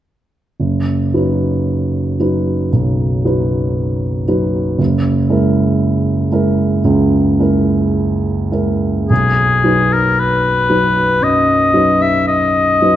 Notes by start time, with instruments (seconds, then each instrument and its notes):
0.60 grand piano F#1
1.14 grand piano F#3 D#4 B4
2.20 grand piano F#3 D#4 B4
2.72 grand piano B1
3.25 grand piano F#3 D#4 B4
4.28 grand piano F#3 D#4 B4
4.78 grand piano F#1
5.29 grand piano G#3 E4 A#4
6.32 grand piano G#3 E4 A#4
6.84 grand piano C#2
7.39 grand piano G#3 E4 A#4
8.51 grand piano G#3 E4 A#4
9.08 grand piano B1, oboe G#4
9.64 grand piano F#3 D#4 B4
9.93 oboe A#4
10.19 oboe B4
10.69 grand piano F#3 D#4 B4
11.21 grand piano F#2, oboe D#5
11.74 grand piano F#3 D#4 B4
12.02 oboe E5
12.27 oboe D#5
12.82 grand piano F#3 D#4 B4